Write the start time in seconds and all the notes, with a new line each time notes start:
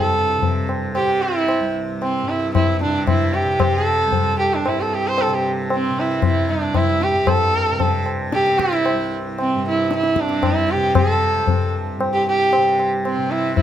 Already playing: C2 G2 C3 G#4
0.03 A4
0.38 C3
0.42 tabla tin, tabla ge
0.69 tabla na
0.95 G4, tabla na
1.01 C3
1.22 E4
1.49 tabla na
1.60 C2
2.02 C4, tabla na
2.23 G2
2.29 E4
2.54 E4, tabla na, tabla ge
2.81 C3 D4, tabla te
3.07 E4, tabla na, tabla ge
3.33 G4, tabla te
3.44 C3
3.60 G4, tabla na, tabla ge
3.85 A4
4.07 C2
4.12 tabla tin, tabla ge
4.39 G4
4.54 D4
4.66 G2 E4, tabla na
4.81 A4
4.94 G4
5.07 C5
5.18 A4, tabla na
5.28 C3 A4
5.34 G4
5.70 C4, tabla na
5.90 C3
5.99 E4
6.22 E4, tabla na, tabla ge
6.49 C2 D4, tabla te
6.74 E4, tabla na, tabla ge
7.01 G4, tabla te
7.11 G2
7.27 A4, tabla na, tabla ge
7.71 C3
7.80 tabla tin, tabla ge
8.06 tabla na
8.32 C3 G4, tabla te
8.46 tabla te
8.59 E4, tabla ke
8.73 tabla te
8.86 tabla na
8.93 C2
9.39 C4, tabla na
9.55 G2
9.68 E4
9.91 tabla te
9.95 E4
10.03 tabla te
10.15 C3, tabla ke
10.20 D4
10.29 tabla te
10.43 E4, tabla na, tabla ge
10.69 G4, tabla te
10.76 C3
10.95 A4, tabla na, tabla ge
11.36 C2
11.47 tabla tin, tabla ge
11.97 G2, tabla na
12.13 G4
12.28 G4
12.53 C3, tabla na
12.79 tabla na
13.05 C4, tabla na
13.18 C3
13.31 E4
13.56 E4, tabla tin, tabla ge